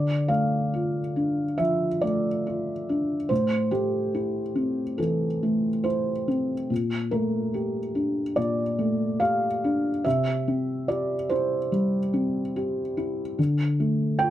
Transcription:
0, 0, Header, 1, 2, 480
1, 0, Start_track
1, 0, Key_signature, -1, "minor"
1, 0, Tempo, 864553
1, 1366, Tempo, 848656
1, 1843, Time_signature, 4, 2, 24, 8
1, 3766, Tempo, 835655
1, 7126, Tempo, 819672
1, 8149, End_track
2, 0, Start_track
2, 0, Title_t, "Felt piano"
2, 0, Program_c, 0, 0
2, 0, Note_on_c, 0, 50, 33
2, 0, Note_on_c, 0, 74, 50
2, 29, Control_c, 0, 64, 127
2, 158, Note_on_c, 0, 77, 51
2, 162, Note_on_c, 0, 57, 25
2, 167, Note_off_c, 0, 74, 0
2, 409, Note_on_c, 0, 65, 27
2, 553, Note_off_c, 0, 57, 0
2, 644, Note_on_c, 0, 62, 28
2, 793, Note_off_c, 0, 65, 0
2, 868, Note_off_c, 0, 50, 0
2, 875, Note_on_c, 0, 76, 57
2, 881, Note_on_c, 0, 53, 27
2, 884, Note_off_c, 0, 77, 0
2, 1029, Note_off_c, 0, 62, 0
2, 1118, Note_on_c, 0, 74, 55
2, 1121, Note_off_c, 0, 76, 0
2, 1128, Note_on_c, 0, 57, 28
2, 1266, Note_off_c, 0, 53, 0
2, 1370, Note_on_c, 0, 65, 26
2, 1510, Note_off_c, 0, 57, 0
2, 1610, Note_on_c, 0, 62, 27
2, 1751, Note_off_c, 0, 65, 0
2, 1835, Note_on_c, 0, 72, 57
2, 1839, Note_off_c, 0, 74, 0
2, 1845, Note_on_c, 0, 45, 36
2, 1846, Note_off_c, 0, 62, 0
2, 1852, Control_c, 0, 64, 0
2, 1928, Control_c, 0, 64, 127
2, 2074, Note_on_c, 0, 67, 50
2, 2075, Note_off_c, 0, 72, 0
2, 2077, Note_on_c, 0, 57, 27
2, 2318, Note_on_c, 0, 64, 28
2, 2463, Note_off_c, 0, 57, 0
2, 2550, Note_on_c, 0, 60, 26
2, 2707, Note_off_c, 0, 64, 0
2, 2782, Note_off_c, 0, 45, 0
2, 2790, Note_on_c, 0, 69, 44
2, 2798, Note_on_c, 0, 52, 28
2, 2801, Note_off_c, 0, 67, 0
2, 2943, Note_off_c, 0, 60, 0
2, 3045, Note_on_c, 0, 57, 28
2, 3186, Note_off_c, 0, 52, 0
2, 3275, Note_on_c, 0, 72, 45
2, 3279, Note_off_c, 0, 69, 0
2, 3280, Note_on_c, 0, 64, 27
2, 3430, Note_off_c, 0, 57, 0
2, 3521, Note_off_c, 0, 72, 0
2, 3525, Note_on_c, 0, 60, 31
2, 3668, Note_off_c, 0, 64, 0
2, 3765, Note_on_c, 0, 46, 36
2, 3766, Note_off_c, 0, 60, 0
2, 3777, Control_c, 0, 64, 0
2, 3871, Control_c, 0, 64, 127
2, 4001, Note_on_c, 0, 70, 49
2, 4007, Note_on_c, 0, 57, 28
2, 4247, Note_on_c, 0, 67, 28
2, 4389, Note_off_c, 0, 57, 0
2, 4482, Note_on_c, 0, 62, 28
2, 4628, Note_off_c, 0, 67, 0
2, 4699, Note_off_c, 0, 46, 0
2, 4718, Note_on_c, 0, 74, 62
2, 4720, Note_off_c, 0, 70, 0
2, 4724, Note_on_c, 0, 46, 33
2, 4867, Note_off_c, 0, 62, 0
2, 4962, Note_on_c, 0, 57, 31
2, 5198, Note_on_c, 0, 77, 62
2, 5205, Note_off_c, 0, 74, 0
2, 5205, Note_on_c, 0, 67, 29
2, 5352, Note_off_c, 0, 57, 0
2, 5454, Note_on_c, 0, 62, 31
2, 5592, Note_off_c, 0, 67, 0
2, 5667, Note_off_c, 0, 46, 0
2, 5685, Note_off_c, 0, 77, 0
2, 5685, Note_on_c, 0, 76, 57
2, 5691, Note_off_c, 0, 62, 0
2, 5692, Note_on_c, 0, 48, 39
2, 5700, Control_c, 0, 64, 0
2, 5784, Control_c, 0, 64, 127
2, 5933, Note_on_c, 0, 60, 28
2, 6164, Note_off_c, 0, 76, 0
2, 6166, Note_on_c, 0, 74, 54
2, 6173, Note_on_c, 0, 67, 31
2, 6313, Note_off_c, 0, 60, 0
2, 6403, Note_on_c, 0, 72, 54
2, 6406, Note_off_c, 0, 74, 0
2, 6412, Note_on_c, 0, 64, 32
2, 6554, Note_off_c, 0, 67, 0
2, 6626, Note_off_c, 0, 48, 0
2, 6648, Note_on_c, 0, 55, 33
2, 6795, Note_off_c, 0, 64, 0
2, 6886, Note_on_c, 0, 60, 34
2, 7032, Note_off_c, 0, 55, 0
2, 7131, Note_on_c, 0, 67, 34
2, 7272, Note_off_c, 0, 60, 0
2, 7371, Note_on_c, 0, 64, 36
2, 7516, Note_off_c, 0, 67, 0
2, 7608, Note_off_c, 0, 72, 0
2, 7611, Note_off_c, 0, 64, 0
2, 7614, Note_on_c, 0, 50, 44
2, 7620, Control_c, 0, 64, 0
2, 7716, Control_c, 0, 64, 127
2, 7855, Note_on_c, 0, 57, 30
2, 8082, Note_on_c, 0, 79, 76
2, 8091, Note_on_c, 0, 65, 35
2, 8149, Note_off_c, 0, 50, 0
2, 8149, Note_off_c, 0, 57, 0
2, 8149, Note_off_c, 0, 65, 0
2, 8149, Note_off_c, 0, 79, 0
2, 8149, End_track
0, 0, End_of_file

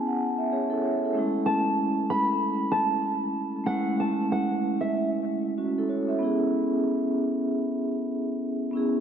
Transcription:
0, 0, Header, 1, 3, 480
1, 0, Start_track
1, 0, Tempo, 631579
1, 878, Time_signature, 4, 2, 24, 8
1, 6842, End_track
2, 0, Start_track
2, 0, Title_t, "Nylon-string guitar"
2, 0, Program_c, 0, 24
2, 1109, Note_on_c, 0, 81, 78
2, 1329, Note_off_c, 0, 81, 0
2, 1596, Note_on_c, 0, 83, 83
2, 1726, Note_off_c, 0, 83, 0
2, 2064, Note_on_c, 0, 81, 79
2, 2761, Note_off_c, 0, 81, 0
2, 2784, Note_on_c, 0, 78, 107
2, 3006, Note_off_c, 0, 78, 0
2, 3039, Note_on_c, 0, 81, 79
2, 3254, Note_off_c, 0, 81, 0
2, 3282, Note_on_c, 0, 78, 80
2, 3640, Note_off_c, 0, 78, 0
2, 3653, Note_on_c, 0, 76, 77
2, 3873, Note_off_c, 0, 76, 0
2, 6842, End_track
3, 0, Start_track
3, 0, Title_t, "Vibraphone"
3, 0, Program_c, 1, 11
3, 0, Control_c, 1, 64, 127
3, 0, Note_on_c, 1, 59, 73
3, 0, Note_on_c, 1, 61, 76
3, 0, Note_on_c, 1, 64, 71
3, 0, Note_on_c, 1, 68, 84
3, 0, Note_on_c, 1, 80, 71
3, 0, Note_on_c, 1, 81, 71
3, 57, Note_on_c, 1, 78, 70
3, 282, Note_off_c, 1, 78, 0
3, 291, Note_on_c, 1, 76, 73
3, 369, Note_off_c, 1, 61, 0
3, 376, Note_off_c, 1, 64, 0
3, 384, Note_off_c, 1, 68, 0
3, 386, Note_off_c, 1, 76, 0
3, 399, Note_on_c, 1, 68, 65
3, 399, Note_on_c, 1, 73, 76
3, 403, Note_on_c, 1, 61, 57
3, 532, Note_on_c, 1, 69, 79
3, 535, Note_off_c, 1, 68, 0
3, 536, Note_on_c, 1, 64, 59
3, 537, Note_off_c, 1, 61, 0
3, 622, Note_off_c, 1, 73, 0
3, 628, Note_off_c, 1, 69, 0
3, 631, Note_off_c, 1, 64, 0
3, 637, Note_on_c, 1, 73, 71
3, 637, Note_on_c, 1, 76, 72
3, 642, Note_on_c, 1, 68, 59
3, 774, Note_off_c, 1, 73, 0
3, 776, Note_off_c, 1, 68, 0
3, 797, Note_on_c, 1, 69, 67
3, 801, Note_on_c, 1, 64, 54
3, 840, Note_off_c, 1, 59, 0
3, 860, Note_on_c, 1, 57, 76
3, 861, Note_off_c, 1, 76, 0
3, 875, Note_on_c, 1, 61, 70
3, 881, Note_off_c, 1, 64, 0
3, 887, Control_c, 1, 64, 0
3, 888, Note_off_c, 1, 80, 0
3, 890, Note_on_c, 1, 64, 72
3, 892, Note_off_c, 1, 81, 0
3, 904, Note_on_c, 1, 56, 87
3, 1017, Note_off_c, 1, 69, 0
3, 1029, Control_c, 1, 64, 127
3, 2759, Note_off_c, 1, 57, 0
3, 2766, Note_off_c, 1, 61, 0
3, 2767, Note_on_c, 1, 57, 77
3, 2774, Note_off_c, 1, 64, 0
3, 2781, Note_off_c, 1, 56, 0
3, 2782, Note_on_c, 1, 61, 71
3, 2798, Note_on_c, 1, 64, 76
3, 2812, Note_on_c, 1, 56, 89
3, 4201, Note_off_c, 1, 61, 0
3, 4209, Note_off_c, 1, 64, 0
3, 4217, Note_off_c, 1, 56, 0
3, 4240, Note_on_c, 1, 66, 73
3, 4244, Note_on_c, 1, 61, 58
3, 4375, Note_off_c, 1, 66, 0
3, 4378, Note_off_c, 1, 61, 0
3, 4395, Note_on_c, 1, 69, 76
3, 4400, Note_on_c, 1, 64, 64
3, 4476, Note_on_c, 1, 73, 69
3, 4480, Note_off_c, 1, 69, 0
3, 4481, Note_on_c, 1, 66, 59
3, 4483, Note_off_c, 1, 64, 0
3, 4613, Note_off_c, 1, 73, 0
3, 4616, Note_off_c, 1, 66, 0
3, 4624, Note_on_c, 1, 76, 70
3, 4629, Note_on_c, 1, 69, 55
3, 4672, Note_off_c, 1, 57, 0
3, 4703, Note_on_c, 1, 59, 80
3, 4718, Note_on_c, 1, 61, 74
3, 4728, Control_c, 1, 64, 0
3, 4733, Note_on_c, 1, 64, 70
3, 4748, Note_on_c, 1, 68, 87
3, 4843, Control_c, 1, 64, 127
3, 4851, Note_off_c, 1, 76, 0
3, 4853, Note_off_c, 1, 69, 0
3, 6600, Note_off_c, 1, 59, 0
3, 6608, Note_off_c, 1, 61, 0
3, 6615, Note_off_c, 1, 64, 0
3, 6621, Note_on_c, 1, 59, 75
3, 6623, Note_off_c, 1, 68, 0
3, 6636, Note_on_c, 1, 61, 78
3, 6651, Note_on_c, 1, 64, 70
3, 6666, Note_on_c, 1, 68, 85
3, 6842, Note_off_c, 1, 59, 0
3, 6842, Note_off_c, 1, 61, 0
3, 6842, Note_off_c, 1, 64, 0
3, 6842, Note_off_c, 1, 68, 0
3, 6842, End_track
0, 0, End_of_file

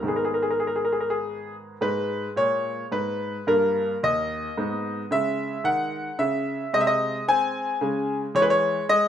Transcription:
0, 0, Header, 1, 2, 480
1, 0, Start_track
1, 0, Key_signature, 5, "minor"
1, 0, Tempo, 577478
1, 69, Time_signature, 3, 2, 24, 8
1, 1510, Tempo, 553506
1, 3430, Tempo, 542986
1, 6310, Tempo, 531444
1, 7929, End_track
2, 0, Start_track
2, 0, Title_t, "Grand piano"
2, 0, Program_c, 0, 0
2, 22, Note_on_c, 0, 44, 42
2, 32, Note_on_c, 0, 51, 36
2, 43, Note_on_c, 0, 56, 36
2, 56, Note_on_c, 0, 59, 38
2, 65, Note_on_c, 0, 68, 57
2, 134, Note_on_c, 0, 70, 56
2, 137, Note_off_c, 0, 68, 0
2, 204, Note_on_c, 0, 68, 57
2, 207, Note_off_c, 0, 70, 0
2, 277, Note_off_c, 0, 68, 0
2, 283, Note_on_c, 0, 70, 54
2, 352, Note_off_c, 0, 70, 0
2, 352, Note_on_c, 0, 68, 59
2, 419, Note_on_c, 0, 70, 58
2, 421, Note_off_c, 0, 68, 0
2, 490, Note_off_c, 0, 70, 0
2, 496, Note_on_c, 0, 68, 55
2, 558, Note_on_c, 0, 70, 54
2, 564, Note_off_c, 0, 68, 0
2, 629, Note_on_c, 0, 68, 54
2, 630, Note_off_c, 0, 70, 0
2, 700, Note_off_c, 0, 68, 0
2, 703, Note_on_c, 0, 70, 56
2, 767, Note_on_c, 0, 68, 55
2, 772, Note_off_c, 0, 70, 0
2, 835, Note_on_c, 0, 70, 52
2, 840, Note_off_c, 0, 68, 0
2, 908, Note_off_c, 0, 70, 0
2, 914, Note_on_c, 0, 68, 62
2, 1272, Note_off_c, 0, 68, 0
2, 1454, Note_off_c, 0, 44, 0
2, 1459, Note_off_c, 0, 51, 0
2, 1464, Note_off_c, 0, 56, 0
2, 1471, Note_off_c, 0, 59, 0
2, 1503, Note_on_c, 0, 56, 40
2, 1506, Note_on_c, 0, 44, 56
2, 1512, Note_on_c, 0, 71, 81
2, 1893, Note_off_c, 0, 44, 0
2, 1920, Note_off_c, 0, 71, 0
2, 1984, Note_on_c, 0, 46, 51
2, 1992, Note_on_c, 0, 73, 81
2, 2368, Note_off_c, 0, 46, 0
2, 2397, Note_off_c, 0, 73, 0
2, 2464, Note_on_c, 0, 44, 50
2, 2468, Note_on_c, 0, 71, 77
2, 2846, Note_off_c, 0, 44, 0
2, 2905, Note_off_c, 0, 56, 0
2, 2944, Note_off_c, 0, 71, 0
2, 2944, Note_on_c, 0, 58, 42
2, 2945, Note_on_c, 0, 43, 55
2, 2950, Note_on_c, 0, 70, 85
2, 3335, Note_off_c, 0, 43, 0
2, 3362, Note_off_c, 0, 70, 0
2, 3433, Note_on_c, 0, 39, 52
2, 3436, Note_on_c, 0, 75, 86
2, 3816, Note_off_c, 0, 39, 0
2, 3876, Note_off_c, 0, 58, 0
2, 3911, Note_on_c, 0, 44, 51
2, 3912, Note_on_c, 0, 59, 37
2, 4293, Note_off_c, 0, 44, 0
2, 4355, Note_off_c, 0, 59, 0
2, 4382, Note_on_c, 0, 49, 56
2, 4385, Note_on_c, 0, 56, 42
2, 4390, Note_off_c, 0, 75, 0
2, 4393, Note_on_c, 0, 76, 90
2, 4764, Note_off_c, 0, 49, 0
2, 4854, Note_on_c, 0, 51, 53
2, 4860, Note_on_c, 0, 78, 90
2, 4864, Note_off_c, 0, 76, 0
2, 5241, Note_off_c, 0, 51, 0
2, 5336, Note_on_c, 0, 49, 58
2, 5338, Note_on_c, 0, 76, 87
2, 5340, Note_off_c, 0, 78, 0
2, 5720, Note_off_c, 0, 49, 0
2, 5782, Note_off_c, 0, 56, 0
2, 5817, Note_off_c, 0, 76, 0
2, 5818, Note_on_c, 0, 48, 59
2, 5820, Note_on_c, 0, 56, 42
2, 5825, Note_on_c, 0, 75, 95
2, 5883, Note_off_c, 0, 75, 0
2, 5883, Note_on_c, 0, 76, 83
2, 5939, Note_on_c, 0, 75, 89
2, 5944, Note_off_c, 0, 76, 0
2, 6213, Note_off_c, 0, 48, 0
2, 6255, Note_off_c, 0, 75, 0
2, 6301, Note_on_c, 0, 60, 58
2, 6307, Note_on_c, 0, 80, 103
2, 6689, Note_off_c, 0, 60, 0
2, 6756, Note_off_c, 0, 56, 0
2, 6781, Note_on_c, 0, 49, 60
2, 6784, Note_on_c, 0, 56, 44
2, 7123, Note_off_c, 0, 80, 0
2, 7168, Note_off_c, 0, 49, 0
2, 7232, Note_off_c, 0, 56, 0
2, 7266, Note_on_c, 0, 52, 66
2, 7267, Note_on_c, 0, 56, 47
2, 7274, Note_on_c, 0, 73, 103
2, 7333, Note_off_c, 0, 73, 0
2, 7333, Note_on_c, 0, 71, 82
2, 7393, Note_off_c, 0, 71, 0
2, 7406, Note_on_c, 0, 73, 94
2, 7653, Note_off_c, 0, 52, 0
2, 7705, Note_off_c, 0, 73, 0
2, 7743, Note_off_c, 0, 56, 0
2, 7757, Note_on_c, 0, 56, 59
2, 7760, Note_on_c, 0, 75, 97
2, 7929, Note_off_c, 0, 56, 0
2, 7929, Note_off_c, 0, 75, 0
2, 7929, End_track
0, 0, End_of_file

